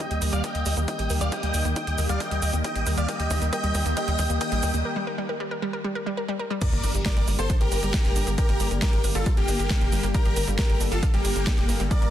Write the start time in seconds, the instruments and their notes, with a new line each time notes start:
0.00 supersaw synth D#5 G5
0.11 analog synth bass D#2, synth arpeggio sound G4, closed hi-hat
0.22 analog synth bass D#2, synth arpeggio sound A#4, open hi-hat, shaker
0.33 analog synth bass D#2, synth arpeggio sound G3, supersaw synth D5 F5, closed hi-hat, shaker
0.44 synth arpeggio sound A#4, supersaw synth D#5 G5, kick, closed hi-hat, shaker
0.55 analog synth bass D#2, synth arpeggio sound G3, closed hi-hat
0.66 analog synth bass D#2, synth arpeggio sound G3, open hi-hat, shaker
0.77 analog synth bass D#2, synth arpeggio sound A#3, closed hi-hat, shaker
0.88 synth arpeggio sound D#4, supersaw synth D#5 G5, kick, closed hi-hat, shaker
0.99 analog synth bass A#1, synth arpeggio sound G4, closed hi-hat
1.10 analog synth bass D#2, synth arpeggio sound A#4, open hi-hat, shaker
1.21 analog synth bass D#2, synth arpeggio sound G3, supersaw synth D5 F5, closed hi-hat, shaker
1.32 synth arpeggio sound A#4, supersaw synth D#5 G5, kick, closed hi-hat, shaker
1.43 analog synth bass D#2, synth arpeggio sound G3, closed hi-hat
1.54 analog synth bass D#2, synth arpeggio sound G3, open hi-hat, shaker
1.65 analog synth bass D#2, synth arpeggio sound A#3, closed hi-hat, shaker
1.76 synth arpeggio sound D#4, supersaw synth D#5 G5, kick, closed hi-hat, shaker
1.87 analog synth bass D#2, synth arpeggio sound G4, closed hi-hat
1.98 analog synth bass D#2, synth arpeggio sound A#4, open hi-hat, shaker
2.09 analog synth bass D#2, synth arpeggio sound G3, supersaw synth D5 F5, closed hi-hat, shaker
2.20 synth arpeggio sound A#4, supersaw synth D#5 G5, kick, closed hi-hat, shaker
2.31 analog synth bass D#2, synth arpeggio sound G3, closed hi-hat
2.42 analog synth bass D#2, synth arpeggio sound G3, open hi-hat, shaker
2.53 analog synth bass D#2, synth arpeggio sound A#3, closed hi-hat, shaker
2.64 synth arpeggio sound D#4, supersaw synth D#5 G5, kick, closed hi-hat, shaker
2.75 analog synth bass A#1, synth arpeggio sound G4, closed hi-hat
2.86 analog synth bass D#2, synth arpeggio sound A#4, open hi-hat, shaker
2.97 analog synth bass D#2, synth arpeggio sound G3, supersaw synth D5 F5, closed hi-hat, shaker
3.08 synth arpeggio sound A#4, supersaw synth D#5 G5, kick, closed hi-hat, shaker
3.20 analog synth bass D#2, synth arpeggio sound G3, closed hi-hat
3.31 analog synth bass D#2, synth arpeggio sound G3, kick, open hi-hat, shaker
3.42 analog synth bass D#2, synth arpeggio sound A#3, closed hi-hat, shaker
3.53 synth arpeggio sound A#4, supersaw synth D#5 G5, kick, closed hi-hat, shaker
3.64 analog synth bass D#2, synth arpeggio sound G3, closed hi-hat
3.75 analog synth bass D#2, synth arpeggio sound G3, kick, open hi-hat, shaker
3.86 analog synth bass D#2, synth arpeggio sound A#3, closed hi-hat, shaker
3.97 synth arpeggio sound A#4, supersaw synth D#5 G5, kick, closed hi-hat, shaker
4.08 analog synth bass D#2, synth arpeggio sound G3, closed hi-hat
4.19 analog synth bass D#2, synth arpeggio sound G3, kick, open hi-hat, shaker
4.30 analog synth bass D#2, synth arpeggio sound A#3, closed hi-hat, shaker
4.41 synth arpeggio sound A#4, supersaw synth D#5 G5, kick, closed hi-hat, shaker
4.52 analog synth bass A#1, synth arpeggio sound G3, closed hi-hat
4.63 analog synth bass D#2, synth arpeggio sound G3, kick, open hi-hat, shaker
4.74 analog synth bass D#2, synth arpeggio sound A#3, closed hi-hat, shaker
4.85 synth arpeggio sound A#4
4.96 synth arpeggio sound G3
5.07 synth arpeggio sound A#4
5.18 synth arpeggio sound G3
5.29 synth arpeggio sound A#4
5.40 synth arpeggio sound G3
5.51 synth arpeggio sound A#4
5.62 synth arpeggio sound G3
5.73 synth arpeggio sound A#4
5.84 synth arpeggio sound G3
5.95 synth arpeggio sound A#4
6.06 synth arpeggio sound G3
6.17 synth arpeggio sound A#4
6.28 synth arpeggio sound G3
6.39 synth arpeggio sound A#4
6.50 synth arpeggio sound G3
6.61 synth arpeggio sound G3, supersaw synth A#4 D5, grand piano D5, kick, closed hi-hat, crash, impact, shaker
6.72 analog synth bass G1, synth arpeggio sound A#3, closed hi-hat
6.84 analog synth bass G1, synth arpeggio sound D4, open hi-hat, shaker
6.95 analog synth bass G1, synth arpeggio sound G4, closed hi-hat, shaker
7.05 supersaw synth A#4 D5, synth arpeggio sound A#4, grand piano D5, kick, snare, closed hi-hat, shaker
7.17 analog synth bass G1, synth arpeggio sound G3, closed hi-hat
7.28 analog synth bass G1, synth arpeggio sound G3, open hi-hat, shaker
7.39 analog synth bass G1, synth arpeggio sound A#3, supersaw synth A4 C5, grand piano C5, closed hi-hat, shaker
7.50 synth arpeggio sound D4, kick, closed hi-hat, shaker
7.61 analog synth bass G1, synth arpeggio sound G4, supersaw synth G4 A#4, grand piano A#4, closed hi-hat
7.72 analog synth bass G1, synth arpeggio sound A#4, open hi-hat, shaker
7.83 analog synth bass G1, synth arpeggio sound G3, closed hi-hat, shaker
7.94 synth arpeggio sound G3, kick, snare, closed hi-hat, shaker
8.05 analog synth bass F1, synth arpeggio sound A#3, snare, closed hi-hat
8.16 analog synth bass G1, synth arpeggio sound D4, open hi-hat, shaker
8.27 analog synth bass G1, synth arpeggio sound G4, closed hi-hat, shaker
8.38 supersaw synth G4 A#4, grand piano A#4, synth arpeggio sound A#4, kick, closed hi-hat, shaker
8.49 analog synth bass G1, synth arpeggio sound G3, closed hi-hat
8.60 analog synth bass G1, synth arpeggio sound G3, open hi-hat, shaker
8.71 analog synth bass G1, synth arpeggio sound A#3, closed hi-hat, shaker
8.82 synth arpeggio sound D4, supersaw synth G4 A#4, grand piano A#4, kick, snare, closed hi-hat, shaker
8.93 analog synth bass G1, synth arpeggio sound G4, closed hi-hat
9.04 analog synth bass G1, synth arpeggio sound A#4, open hi-hat, shaker
9.15 analog synth bass G1, synth arpeggio sound G3, supersaw synth F4 A4, grand piano A4, closed hi-hat, shaker
9.26 synth arpeggio sound G3, kick, closed hi-hat, shaker
9.37 analog synth bass G1, supersaw synth A#3 G4, synth arpeggio sound A#3, grand piano G4, closed hi-hat
9.48 analog synth bass G1, synth arpeggio sound D4, open hi-hat, shaker
9.59 analog synth bass G1, synth arpeggio sound G4, closed hi-hat, shaker
9.70 synth arpeggio sound A#4, kick, snare, closed hi-hat, shaker
9.81 analog synth bass F1, synth arpeggio sound G3, closed hi-hat
9.92 analog synth bass G1, synth arpeggio sound G3, open hi-hat, shaker
10.03 analog synth bass G1, synth arpeggio sound A#3, closed hi-hat, shaker
10.14 synth arpeggio sound D4, supersaw synth G4 A#4, grand piano A#4, kick, closed hi-hat, shaker
10.25 analog synth bass G1, synth arpeggio sound G4, closed hi-hat
10.36 analog synth bass G1, synth arpeggio sound A#4, open hi-hat, shaker
10.47 analog synth bass G1, synth arpeggio sound G3, closed hi-hat, shaker
10.59 synth arpeggio sound G3, supersaw synth G4 A#4, grand piano A#4, kick, snare, closed hi-hat, shaker
10.70 analog synth bass G1, synth arpeggio sound A#3, closed hi-hat
10.81 analog synth bass G1, synth arpeggio sound D4, open hi-hat, shaker
10.92 analog synth bass G1, supersaw synth F4 A4, synth arpeggio sound G4, grand piano A4, closed hi-hat, shaker
11.03 synth arpeggio sound A#4, kick, closed hi-hat, shaker
11.14 analog synth bass G1, synth arpeggio sound G3, supersaw synth A#3 G4, grand piano G4, closed hi-hat
11.25 analog synth bass G1, synth arpeggio sound G3, open hi-hat, shaker
11.36 analog synth bass G1, synth arpeggio sound A#3, closed hi-hat, shaker
11.47 synth arpeggio sound D4, kick, snare, closed hi-hat, shaker
11.58 analog synth bass F1, synth arpeggio sound G4, snare, closed hi-hat
11.69 analog synth bass G1, synth arpeggio sound A#4, open hi-hat, shaker
11.80 analog synth bass G1, synth arpeggio sound G3, closed hi-hat, shaker
11.91 synth arpeggio sound G3, supersaw synth A#4 D5, grand piano D5, kick, closed hi-hat, shaker
12.02 analog synth bass G1, synth arpeggio sound A#3, closed hi-hat